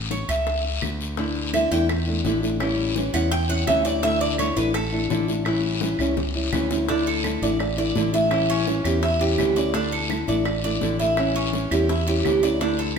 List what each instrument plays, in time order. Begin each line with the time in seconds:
Already playing: picked electric bass A1
0.11 cuban tres C#5, high bongo, short guiro
0.29 picked electric bass C#2, cuban tres E5, high bongo, short guiro, claves
0.47 high bongo, long guiro
0.64 high bongo
0.82 picked electric bass D2, high bongo, low bongo, short guiro, claves
1.01 short guiro
1.17 nylon-string guitar D3 A3 D4 E4, high bongo, long guiro
1.36 high bongo
1.54 nylon-string guitar D3 A3 D4 E4, cuban tres E5, high bongo, short guiro, claves
1.71 picked electric bass E2, nylon-string guitar A3 D4 E4, cuban tres G5, high bongo, short guiro
1.89 muted nylon-string guitar stroke, high bongo, long guiro, claves
2.07 nylon-string guitar A3 D4 E4, high bongo
2.25 picked electric bass A1, nylon-string guitar D3 A3 D4 E4, high bongo, low bongo, short guiro
2.42 nylon-string guitar A3 D4 E4, short guiro
2.60 nylon-string guitar E3 G3 C#4 E4, high bongo, long guiro, claves
2.78 high bongo
2.96 nylon-string guitar E3 G3 C#4 E4, high bongo, short guiro
3.14 picked electric bass E2, nylon-string guitar G3 C#4 E4, cuban tres F#5, high bongo, short guiro, claves
3.31 cuban tres G5, muted nylon-string guitar stroke, high bongo, long guiro
3.49 nylon-string guitar G3 C#4 E4, cuban tres F#5, high bongo
3.67 picked electric bass D2, nylon-string guitar E3 G3 C#4 E4, cuban tres E5, high bongo, low bongo, short guiro, claves
3.85 nylon-string guitar G3 C#4 E4, cuban tres D5, short guiro
4.02 nylon-string guitar D3 A3 D4 E4, cuban tres E5, high bongo, long guiro
4.21 cuban tres D5, high bongo
4.38 nylon-string guitar D3 A3 D4 E4, cuban tres C#5, high bongo, short guiro, claves
4.56 picked electric bass A1, nylon-string guitar A3 D4 E4, cuban tres B4, high bongo, short guiro
4.74 cuban tres A4, muted nylon-string guitar stroke, high bongo, long guiro, claves
4.92 nylon-string guitar A3 D4 E4, high bongo
5.10 picked electric bass A1, nylon-string guitar D3 A3 D4 E4, high bongo, low bongo, short guiro
5.28 nylon-string guitar A3 D4 E4, short guiro
5.45 nylon-string guitar E3 G3 C#4 E4, high bongo, long guiro, claves
5.63 high bongo
5.81 nylon-string guitar E3 G3 C#4 E4, high bongo, short guiro
5.99 picked electric bass C#2, nylon-string guitar G3 C#4 E4, short guiro, claves
6.17 muted nylon-string guitar stroke, low bongo, long guiro
6.35 nylon-string guitar G3 C#4 E4
6.52 picked electric bass D2, nylon-string guitar E3 G3 C#4 E4, low bongo, short guiro, claves
6.71 nylon-string guitar G3 C#4 E4, low bongo, short guiro
6.89 nylon-string guitar D3 A3 D4 E4, cuban tres D4, high bongo, long guiro
7.06 cuban tres A4, high bongo
7.24 nylon-string guitar D3 A3 D4 E4, high bongo, short guiro, claves
7.42 picked electric bass A1, nylon-string guitar A3 D4 E4, cuban tres D5, high bongo, short guiro
7.60 muted nylon-string guitar stroke, high bongo, long guiro, claves
7.77 nylon-string guitar A3 D4 E4, cuban tres D5, high bongo
7.95 picked electric bass A1, nylon-string guitar D3 A3 D4 E4, high bongo, low bongo, short guiro
8.13 nylon-string guitar A3 D4 E4, cuban tres E4, short guiro
8.31 nylon-string guitar E3 G3 C#4 E4, high bongo, long guiro, claves
8.49 cuban tres C#4, high bongo
8.67 nylon-string guitar E3 G3 C#4 E4, high bongo, short guiro
8.84 picked electric bass E2, nylon-string guitar G3 C#4 E4, cuban tres G4, high bongo, short guiro, claves
9.02 cuban tres E4, muted nylon-string guitar stroke, high bongo, long guiro
9.20 nylon-string guitar G3 C#4 E4, cuban tres G4, high bongo
9.38 picked electric bass D2, nylon-string guitar E3 G3 C#4 E4, high bongo, low bongo, short guiro, claves
9.56 nylon-string guitar G3 C#4 E4, cuban tres D5, short guiro
9.74 nylon-string guitar D3 A3 D4 E4, cuban tres D4, high bongo, long guiro
9.92 cuban tres A4, high bongo
10.10 nylon-string guitar D3 A3 D4 E4, high bongo, short guiro, claves
10.27 picked electric bass A1, nylon-string guitar A3 D4 E4, cuban tres D5, high bongo, short guiro
10.45 muted nylon-string guitar stroke, high bongo, long guiro, claves
10.63 nylon-string guitar A3 D4 E4, cuban tres D5, high bongo
10.81 picked electric bass A1, nylon-string guitar D3 A3 D4 E4, high bongo, low bongo, short guiro
10.99 nylon-string guitar A3 D4 E4, cuban tres E4, short guiro
11.17 nylon-string guitar E3 G3 C#4 E4, high bongo, long guiro, claves
11.35 cuban tres C#4, high bongo
11.53 nylon-string guitar E3 G3 C#4 E4, high bongo, short guiro
11.71 picked electric bass E2, nylon-string guitar G3 C#4 E4, cuban tres G4, high bongo, short guiro, claves
11.89 cuban tres E4, muted nylon-string guitar stroke, high bongo, long guiro
12.07 nylon-string guitar G3 C#4 E4, cuban tres G4, high bongo
12.25 picked electric bass D2, nylon-string guitar E3 G3 C#4 E4, high bongo, low bongo, short guiro, claves
12.43 nylon-string guitar G3 C#4 E4, cuban tres D5, short guiro
12.61 nylon-string guitar D3 A3 D4 E4, cuban tres D4, high bongo, long guiro
12.79 cuban tres A4, high bongo